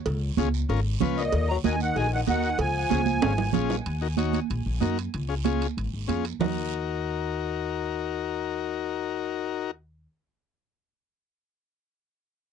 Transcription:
0.06 upright bass C#2, cowbell, long guiro
0.37 upright bass C#2, transistor combo organ C#4 F4 G#4, cowbell, high conga, short guiro
0.54 short guiro
0.69 upright bass G#1, transistor combo organ C#4 F4 A#4, cowbell, long guiro
1.01 upright bass C#2, transistor combo organ C#4 F4 B4, cowbell, high conga, low conga, short guiro
1.17 tenor saxophone A#2, accordion D#5, short guiro
1.33 upright bass D#2, cowbell, long guiro
1.49 tenor saxophone F#3, accordion A#5
1.64 upright bass D#2, tenor saxophone D#3, transistor combo organ D#4 F#4 A#4, accordion G#5, cowbell, high conga, short guiro
1.80 tenor saxophone D#3, accordion F#5, short guiro
1.95 upright bass A#1, tenor saxophone D#3, transistor combo organ D#4 F#4 G#4, accordion G#5, cowbell, long guiro
2.14 tenor saxophone D#3, accordion F#5
2.27 upright bass D#2, tenor saxophone D#3, transistor combo organ D#4 F#4 A#4, accordion F#5, cowbell, high conga, short guiro
2.43 short guiro
2.58 upright bass C#2, tenor saxophone F3, accordion G#5, cowbell, long guiro
2.90 upright bass C#2, transistor combo organ C#4 F4 G#4, cowbell, high conga, short guiro
3.06 high conga, short guiro
3.22 upright bass G#1, transistor combo organ C#4 F4 G#4, cowbell, high timbale, long guiro
3.38 low timbale
3.53 upright bass A#1, transistor combo organ C#4 F4 G#4, cowbell, high conga, low conga, short guiro
3.70 low timbale, short guiro
3.86 upright bass D#2, high timbale, long guiro
4.01 transistor combo organ D#4 F#4 A#4
4.17 transistor combo organ D#4 F#4 C#5, high conga, high timbale, short guiro
4.33 high conga, high timbale, short guiro
4.50 upright bass A#1, high timbale, long guiro
4.66 upright bass A#1
4.81 upright bass F#2, transistor combo organ D#4 F#4 A#4, high conga, high timbale, short guiro
4.98 high timbale, short guiro
5.14 upright bass C#2, high timbale, long guiro
5.29 transistor combo organ C#4 F4 G#4
5.44 transistor combo organ C#4 F4 G#4, high conga, high timbale, short guiro
5.62 high timbale, short guiro
5.77 upright bass G#1, high timbale, long guiro
5.93 upright bass G#1
6.08 upright bass F2, transistor combo organ C#4 F4 G#4, high conga, high timbale, short guiro
6.25 high timbale, short guiro
6.40 upright bass D#2, transistor combo organ D#4 F#4 A#4, low conga, low timbale, long guiro

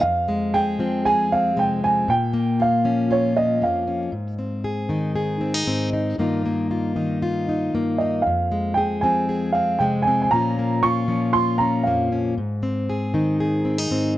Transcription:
0.01 steel-string acoustic guitar F2, upright piano F5
0.28 steel-string acoustic guitar G#3
0.54 steel-string acoustic guitar G#4, upright piano G5
0.79 steel-string acoustic guitar F3 C4
1.05 steel-string acoustic guitar G#4, upright piano G#5
1.32 steel-string acoustic guitar C4, upright piano F5
1.56 steel-string acoustic guitar C3 G#3, upright piano G5
1.84 steel-string acoustic guitar C4, upright piano G#5
2.08 steel-string acoustic guitar A#2, upright piano G5
2.34 steel-string acoustic guitar A#3
2.60 steel-string acoustic guitar F4, upright piano F5
2.84 steel-string acoustic guitar F3 C#4
3.11 steel-string acoustic guitar F4, upright piano C#5
3.36 steel-string acoustic guitar C#4, upright piano D#5
3.61 steel-string acoustic guitar F2 A#3, upright piano F5
3.87 steel-string acoustic guitar C#4
4.12 steel-string acoustic guitar G#2
4.39 steel-string acoustic guitar C4
4.64 steel-string acoustic guitar G#4
4.89 steel-string acoustic guitar D#3 D#4
5.16 steel-string acoustic guitar G#4
5.41 steel-string acoustic guitar C4
5.54 steel-string acoustic guitar D#4
5.67 steel-string acoustic guitar G#2 C4
5.93 steel-string acoustic guitar D#4
6.18 steel-string acoustic guitar G2 D#3 A#3 D#4 F4
6.46 steel-string acoustic guitar A#3
6.71 steel-string acoustic guitar F4
6.96 steel-string acoustic guitar D#3 D#4
7.22 steel-string acoustic guitar F4
7.49 steel-string acoustic guitar D#4
7.74 steel-string acoustic guitar G2 A#3
7.98 steel-string acoustic guitar D#4, upright piano D#5
8.22 upright piano F5
8.27 steel-string acoustic guitar F2
8.52 steel-string acoustic guitar G#3
8.74 steel-string acoustic guitar G#4, upright piano G5
9.01 steel-string acoustic guitar F3 C4, upright piano G#5
9.29 steel-string acoustic guitar G#4
9.52 steel-string acoustic guitar C4, upright piano F5
9.79 steel-string acoustic guitar C3 G#3, upright piano G5
10.02 upright piano G#5
10.07 steel-string acoustic guitar C4
10.22 upright piano G#5
10.31 steel-string acoustic guitar A#2 F3 A#3 C#4, upright piano A#5
10.35 steel-string acoustic guitar F4
10.59 steel-string acoustic guitar A#3
10.83 steel-string acoustic guitar F4, upright piano C#6
11.08 steel-string acoustic guitar F3 C#4
11.33 steel-string acoustic guitar F4, upright piano C6
11.58 steel-string acoustic guitar C#4, upright piano A#5
11.83 steel-string acoustic guitar F2 A#3, upright piano F5
12.12 steel-string acoustic guitar C#4
12.38 steel-string acoustic guitar G#2
12.63 steel-string acoustic guitar C4
12.90 steel-string acoustic guitar G#4
13.14 steel-string acoustic guitar D#3 D#4
13.40 steel-string acoustic guitar G#4
13.65 steel-string acoustic guitar C4
13.78 steel-string acoustic guitar D#4
13.91 steel-string acoustic guitar G#2 C4

